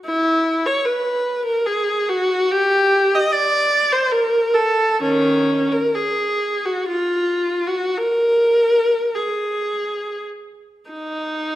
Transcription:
0.05 E4
0.65 C#5
0.85 B4
1.45 A#4
1.66 G#4
2.09 F#4
2.51 G4
3.14 D#5
3.32 D5
3.92 C5
4.11 A#4
4.54 A4
5.01 D#3 C#4
5.72 A#4
5.95 G#4
6.65 F#4
6.88 F4
7.66 F#4
7.97 A#4
9.14 G#4
10.90 D#4

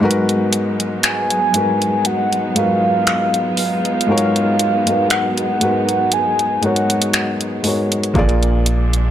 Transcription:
Already playing: F#3
0.00 G#2 G#3 B3 D#4 F#4 A#4
0.05 B4
0.11 closed hi-hat
0.29 closed hi-hat
0.53 closed hi-hat
0.80 closed hi-hat
1.03 G#5, finger snap, closed hi-hat
1.30 closed hi-hat
1.53 G#2 G#3 F#4 A#4, closed hi-hat
1.58 B4
1.82 closed hi-hat
2.05 F#5, closed hi-hat
2.33 closed hi-hat
2.54 G#2 G#3 F#4 A#4 F5, closed hi-hat
2.59 B4
3.07 finger snap, closed hi-hat
3.34 closed hi-hat
3.57 F5, open hi-hat
3.85 closed hi-hat
4.01 closed hi-hat
4.07 G#2 G#3 F#4 A#4
4.12 C#5
4.18 closed hi-hat
4.36 closed hi-hat
4.59 closed hi-hat
4.85 G#2 G#3 F#4 A#4, closed hi-hat
4.90 B4
5.10 F#5, finger snap, closed hi-hat
5.38 closed hi-hat
5.60 G#2 G#3 F#4 A#4, closed hi-hat
5.64 B4
5.89 closed hi-hat
6.12 G#5, closed hi-hat
6.39 closed hi-hat
6.61 G#2 G#3 F#4 A#4 F#5, closed hi-hat
6.66 C#5
6.76 closed hi-hat
6.90 closed hi-hat
7.02 closed hi-hat
7.13 finger snap, closed hi-hat
7.41 closed hi-hat
7.63 G#2 G#3 F#4 A#4, open hi-hat
7.68 C#5
7.92 closed hi-hat
8.03 closed hi-hat
8.14 A#1 A#2 A#3 D4 F4 G#4, kick, closed hi-hat
8.19 D5
8.29 closed hi-hat
8.43 closed hi-hat
8.66 closed hi-hat
8.93 closed hi-hat

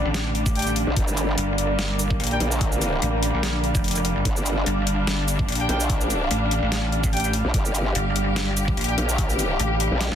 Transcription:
Already playing: D3 G3 D4 D5 F5
0.05 A1
0.14 snare, closed hi-hat
0.35 closed hi-hat
0.46 kick, shaker
0.55 D4 G4 G5, closed hi-hat
0.59 closed hi-hat
0.62 closed hi-hat
0.67 closed hi-hat, shaker
0.76 open hi-hat
0.87 A#1
0.96 G1 A#3, kick, closed hi-hat
1.08 shaker
1.17 closed hi-hat, shaker
1.38 G1, closed hi-hat
1.58 closed hi-hat
1.79 snare, closed hi-hat
1.99 closed hi-hat, shaker
2.10 kick
2.20 A#1, closed hi-hat
2.24 closed hi-hat
2.27 closed hi-hat
2.31 D4 G4 G5, closed hi-hat
2.40 A#1, open hi-hat
2.52 shaker
2.61 kick, closed hi-hat
2.72 shaker
2.81 closed hi-hat, shaker
3.02 A1, closed hi-hat
3.23 closed hi-hat
3.34 A#1
3.43 snare, closed hi-hat
3.64 closed hi-hat
3.75 F1, kick, shaker
3.84 closed hi-hat
3.88 closed hi-hat
3.91 closed hi-hat
3.95 closed hi-hat, shaker
4.05 open hi-hat
4.16 G1
4.25 G1 D4, kick, closed hi-hat
4.36 shaker
4.46 closed hi-hat, shaker
4.66 G1, closed hi-hat
4.87 closed hi-hat
5.07 snare, closed hi-hat
5.28 closed hi-hat, shaker
5.39 kick
5.49 A#1, closed hi-hat
5.52 closed hi-hat
5.55 closed hi-hat
5.60 D4 G4 G5, closed hi-hat
5.69 A#1 D4 G4 G5, open hi-hat
5.80 shaker
5.90 kick, closed hi-hat
6.01 shaker
6.10 closed hi-hat, shaker
6.31 A1, closed hi-hat
6.51 closed hi-hat
6.63 A1
6.72 snare, closed hi-hat
6.92 closed hi-hat
7.04 kick, shaker
7.13 D4 G4 G5, closed hi-hat
7.17 closed hi-hat
7.20 closed hi-hat
7.24 shaker
7.33 open hi-hat
7.45 A#1
7.54 G1 G4, kick, closed hi-hat
7.65 shaker
7.75 closed hi-hat, shaker
7.95 G1, closed hi-hat
8.16 closed hi-hat
8.36 snare, closed hi-hat
8.57 closed hi-hat, shaker
8.68 kick
8.77 A#1, closed hi-hat
8.81 closed hi-hat
8.84 closed hi-hat
8.88 D4 G4 G5, closed hi-hat
8.98 A#1, open hi-hat
9.09 shaker
9.18 kick, closed hi-hat
9.30 shaker
9.39 closed hi-hat, shaker
9.60 A1, closed hi-hat
9.80 closed hi-hat
9.91 A#1
10.01 snare, closed hi-hat
10.12 G1, snare

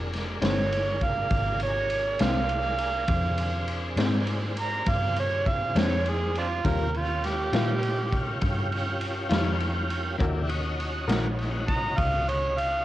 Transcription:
Already playing: F1 A#3 D4 G#4
0.13 snare, ride
0.42 G1 A#2 G#3 C4 D4 C#5, snare, ride
0.72 ride
1.01 F5, kick, ride
1.30 G#1, kick, ride
1.60 C#5, ride
1.90 ride
2.19 C2 A#2 G#3 C4 D4 F5, snare, ride
2.49 ride
2.79 ride
3.08 F2 C4 D4 G#4, kick, ride
3.38 ride
3.68 ride
3.96 G#2 A#2 G#3 C4 D4, snare, ride
4.27 ride
4.57 A#5, ride
4.86 G2 F5, kick, ride
5.16 C#5, ride
5.46 F5, kick, ride
5.75 F2 A#2 G#3 C4 D4 C#5, snare, ride
6.05 G#4, ride
6.35 C4 D4 F4, ride
6.64 D#2 D#3 G3 C#4 F4 G4 A#4, kick, ride
6.94 F4, ride
7.24 G4, snare, ride
7.53 A#2 D#3 G3 C#4 F4, snare, ride
7.83 ride
8.12 kick, ride
8.41 G2, kick, ride
8.72 ride
9.01 ride
9.29 F2 D#3 G3 C#4 F4, snare, ride
9.60 ride
9.90 ride
10.18 D#2 D#3 C#4 D4 E4 F#4 G4 A#4, kick, ride
10.49 C#4 D#4 F#4, ride
10.80 ride
11.08 A#1 D#3 C#4 F#4 A#4, snare, ride
11.39 ride
11.69 A#5, kick, ride
11.98 C#2 F5, kick, ride
12.29 C#5, ride
12.58 F5, ride

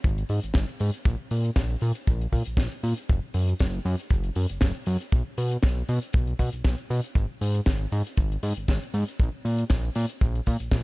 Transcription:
0.04 G#1, kick, closed hi-hat, cabasa
0.18 closed hi-hat
0.29 G#2, open hi-hat, cabasa
0.43 G#1, closed hi-hat, cabasa
0.54 G#1, kick, snare, closed hi-hat, cabasa
0.69 closed hi-hat
0.80 G#2, open hi-hat, cabasa
0.94 closed hi-hat, cabasa
1.05 A#1, kick, closed hi-hat, cabasa
1.31 A#2, open hi-hat, cabasa
1.44 closed hi-hat, cabasa
1.56 A#1, kick, snare, closed hi-hat, cabasa
1.81 A#2, open hi-hat, cabasa
1.95 closed hi-hat, cabasa
2.07 A#1, kick, closed hi-hat, cabasa
2.21 closed hi-hat
2.32 A#2, kick, open hi-hat, cabasa
2.45 A#1, closed hi-hat, cabasa
2.57 A#1, kick, snare, closed hi-hat, cabasa
2.72 closed hi-hat
2.83 A#2, open hi-hat, cabasa
2.98 closed hi-hat, cabasa
3.09 F#1, kick, closed hi-hat, cabasa
3.34 F#2, open hi-hat, cabasa
3.48 closed hi-hat, cabasa
3.59 F#1, kick, snare, closed hi-hat, cabasa
3.85 F#2, open hi-hat, cabasa
3.99 closed hi-hat, cabasa
4.10 F#1, kick, closed hi-hat, cabasa
4.24 closed hi-hat
4.35 F#2, open hi-hat, cabasa
4.50 F#1, closed hi-hat, cabasa
4.61 F#1, kick, snare, closed hi-hat, cabasa
4.75 closed hi-hat
4.86 F#2, open hi-hat, cabasa
5.01 closed hi-hat, cabasa
5.12 B1, kick, closed hi-hat, cabasa
5.38 B2, open hi-hat, cabasa
5.51 closed hi-hat, cabasa
5.63 B1, kick, snare, closed hi-hat, cabasa
5.89 B2, open hi-hat, cabasa
6.02 closed hi-hat, cabasa
6.13 B1, kick, closed hi-hat, cabasa
6.27 closed hi-hat
6.39 B2, kick, open hi-hat, cabasa
6.53 B1, closed hi-hat, cabasa
6.64 B1, kick, snare, closed hi-hat, cabasa
6.78 closed hi-hat
6.90 B2, open hi-hat, cabasa
7.04 closed hi-hat, cabasa
7.15 G#1, kick, closed hi-hat, cabasa
7.41 G#2, open hi-hat, cabasa
7.55 closed hi-hat, cabasa
7.66 G#1, kick, snare, closed hi-hat, cabasa
7.92 G#2, open hi-hat, cabasa
8.07 closed hi-hat, cabasa
8.17 G#1, kick, closed hi-hat, cabasa
8.32 closed hi-hat
8.43 G#2, open hi-hat, cabasa
8.56 G#1, closed hi-hat, cabasa
8.68 G#1, kick, snare, closed hi-hat, cabasa
8.82 closed hi-hat
8.94 G#2, open hi-hat, cabasa
9.08 closed hi-hat, cabasa
9.20 A#1, kick, closed hi-hat, cabasa
9.45 A#2, open hi-hat, cabasa
9.58 closed hi-hat, cabasa
9.70 A#1, kick, snare, closed hi-hat, cabasa
9.95 A#2, open hi-hat, cabasa
10.09 closed hi-hat, cabasa
10.21 A#1, kick, closed hi-hat, cabasa
10.35 closed hi-hat
10.46 A#2, kick, open hi-hat, cabasa
10.60 A#1, closed hi-hat, cabasa
10.71 A#1, kick, snare, closed hi-hat, cabasa

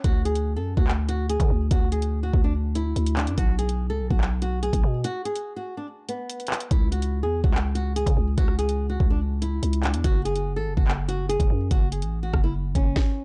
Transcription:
0.04 D2 F#4, kick, closed hi-hat
0.25 G#4, closed hi-hat
0.35 closed hi-hat
0.56 F#2 A4
0.77 D2 F#4, kick
0.88 clap
1.09 F#4, closed hi-hat
1.29 G#4, closed hi-hat
1.40 D3, kick, closed hi-hat
1.50 D2
1.71 D2 F#4, kick, closed hi-hat
1.92 G#4, closed hi-hat
2.02 closed hi-hat
2.23 F#4
2.33 D2, kick
2.44 D4
2.75 E4, closed hi-hat
2.96 D2, closed hi-hat
3.06 closed hi-hat
3.17 D4, clap, closed hi-hat
3.27 F#2, closed hi-hat
3.38 B1 F#4, kick, closed hi-hat
3.59 G#4, closed hi-hat
3.69 closed hi-hat
3.90 C#2 A4
4.00 B1
4.10 B1 F#4, kick
4.21 clap
4.42 F#4, closed hi-hat
4.63 G#4, closed hi-hat
4.73 B1, kick, closed hi-hat
4.84 B2
5.04 F#4, closed hi-hat
5.25 G#4, closed hi-hat
5.36 closed hi-hat
5.56 F#4
5.77 D4
6.09 B3, closed hi-hat
6.30 closed hi-hat
6.40 closed hi-hat
6.47 clap, closed hi-hat
6.54 closed hi-hat
6.60 closed hi-hat
6.71 C#2 E4, kick, closed hi-hat
6.92 F#4, closed hi-hat
7.02 closed hi-hat
7.23 E2 G#4
7.44 C#2 F#4, kick
7.54 clap
7.75 F#4, closed hi-hat
7.96 G#4, closed hi-hat
8.06 C#3, kick, closed hi-hat
8.17 C#2
8.38 C#2 F#4, kick, closed hi-hat
8.48 cross-stick
8.59 G#4, closed hi-hat
8.69 closed hi-hat
8.90 F#4
9.00 C#2, kick
9.10 D4
9.42 E4, closed hi-hat
9.63 C#2, closed hi-hat
9.73 closed hi-hat
9.83 D4, clap, closed hi-hat
9.94 E2, closed hi-hat
10.04 F#1 F#4, kick, closed hi-hat
10.25 G#4, closed hi-hat
10.36 closed hi-hat
10.56 G#1 A4
10.67 F#1
10.77 F#1 F#4, kick
10.88 clap
11.08 F#4, closed hi-hat
11.29 G#4, closed hi-hat
11.40 F#1, kick, closed hi-hat
11.50 F#2
11.71 F#1 F#4, kick, closed hi-hat
11.92 G#4, closed hi-hat
12.02 A1, closed hi-hat
12.23 F#4
12.33 F#1, kick, cross-stick
12.44 E4
12.75 F#1 C#4, kick, closed hi-hat
12.96 kick, snare

